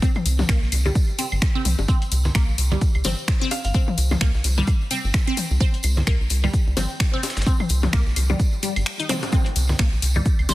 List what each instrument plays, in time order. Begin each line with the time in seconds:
0.02 synth arpeggio sound C4, kick, tambourine, shaker
0.15 high tom, tambourine, claves
0.26 analog synth bass C2, open hi-hat, tambourine, shaker
0.39 snare, high tom, tambourine, high bongo, low conga
0.49 analog synth bass C2, synth arpeggio sound A#3, finger snap, kick, snare, shaker
0.62 analog synth bass A#1, snare, tambourine
0.72 analog synth bass C2, open hi-hat, tambourine, claves, shaker
0.86 synth arpeggio sound G3, tambourine, low conga
0.95 kick, tambourine, shaker
1.09 tambourine
1.19 synth arpeggio sound C4, open hi-hat, tambourine, shaker
1.32 analog synth bass G1, tambourine, claves
1.42 finger snap, kick, snare, tambourine, shaker
1.55 synth arpeggio sound C4, tambourine
1.65 analog synth bass C2, open hi-hat, high tom, tambourine, shaker
1.78 analog synth bass G1, tambourine, high bongo
1.88 synth arpeggio sound C4, kick, tambourine, shaker
2.02 closed hi-hat, tambourine
2.12 analog synth bass C2, open hi-hat, tambourine, shaker
2.25 snare, tambourine, low conga
2.35 analog synth bass C2, synth arpeggio sound A#3, finger snap, kick, snare, claves, shaker
2.48 analog synth bass A#1, tambourine
2.58 analog synth bass C2, open hi-hat, tambourine, shaker
2.71 synth arpeggio sound G3, tambourine, low conga
2.81 kick, tambourine, shaker
2.95 analog synth bass C2, tambourine, claves
3.04 analog synth bass G1, synth arpeggio sound C4, open hi-hat, high tom, tambourine, high bongo, low conga
3.19 tambourine
3.28 finger snap, kick, snare, tambourine, shaker
3.41 synth arpeggio sound C4, snare, tambourine
3.51 synth bell F5, open hi-hat, tambourine, high bongo, claves, shaker
3.64 analog synth bass G1, synth bell F5, closed hi-hat, tambourine
3.74 synth arpeggio sound C4, kick, tambourine, shaker
3.88 high tom, tambourine
3.98 analog synth bass C2, open hi-hat, tambourine, shaker
4.11 snare, high tom, tambourine, high bongo, low conga, claves
4.21 analog synth bass C2, synth arpeggio sound A#3, finger snap, kick, snare, shaker
4.34 analog synth bass A#1, snare, tambourine
4.44 analog synth bass C2, open hi-hat, tambourine, shaker
4.58 synth arpeggio sound G3, tambourine, low conga
4.67 kick, tambourine, claves, shaker
4.81 tambourine
4.91 synth arpeggio sound C4, open hi-hat, tambourine, shaker
5.04 analog synth bass G1, tambourine
5.14 finger snap, kick, snare, tambourine, shaker
5.27 synth arpeggio sound C4, tambourine, claves
5.37 open hi-hat, high tom, tambourine, shaker
5.51 analog synth bass C2, tambourine
5.61 synth arpeggio sound C4, kick, tambourine, shaker
5.74 closed hi-hat, tambourine
5.83 analog synth bass C2, open hi-hat, tambourine, claves, shaker
5.97 snare, tambourine, low conga
6.07 analog synth bass C2, synth arpeggio sound A#3, finger snap, kick, snare, shaker
6.20 analog synth bass A#1, tambourine
6.30 analog synth bass C2, open hi-hat, tambourine, shaker
6.44 synth arpeggio sound G3, tambourine, low conga, claves
6.54 kick, tambourine, shaker
6.67 analog synth bass C2, tambourine
6.77 analog synth bass G1, synth arpeggio sound C4, open hi-hat, high tom, tambourine, high bongo, low conga
6.90 tambourine
7.00 finger snap, kick, snare, claves, shaker
7.13 synth arpeggio sound C4, snare, tambourine
7.23 snare, open hi-hat, tambourine, high bongo, shaker
7.30 snare, shaker
7.37 analog synth bass G1, snare, tambourine, shaker
7.42 snare, shaker
7.46 synth arpeggio sound C4, kick, tambourine, shaker
7.60 high tom, tambourine, claves
7.69 analog synth bass C2, open hi-hat, tambourine, shaker
7.83 snare, high tom, tambourine, high bongo, low conga
7.93 analog synth bass C2, synth arpeggio sound A#3, finger snap, kick, snare, tambourine, shaker
8.06 analog synth bass A#1, snare, tambourine
8.16 analog synth bass C2, open hi-hat, tambourine, claves, shaker
8.30 synth arpeggio sound G3, high tom, tambourine, high bongo, low conga
8.40 kick, tambourine, shaker
8.53 tambourine
8.63 synth arpeggio sound G3, open hi-hat, tambourine, shaker
8.76 analog synth bass G1, closed hi-hat, tambourine, claves
8.86 finger snap, tambourine, shaker
8.99 synth arpeggio sound D#4, tambourine, shaker
9.09 synth arpeggio sound C4, closed hi-hat, open hi-hat, high tom, tambourine, zap
9.23 tambourine, high bongo, shaker
9.32 synth arpeggio sound C4, kick, tambourine, shaker
9.46 closed hi-hat, tambourine
9.56 analog synth bass C2, open hi-hat, tambourine, shaker
9.69 snare, tambourine, low conga
9.79 analog synth bass C2, synth arpeggio sound A#3, finger snap, kick, snare, claves, shaker
9.92 analog synth bass A#1, tambourine
10.02 analog synth bass C2, open hi-hat, tambourine, shaker
10.16 synth arpeggio sound G3, tambourine, low conga
10.26 kick, tambourine, shaker
10.39 analog synth bass C2, tambourine, claves
10.49 analog synth bass G1, synth arpeggio sound C5, open hi-hat, high tom, tambourine, high bongo, low conga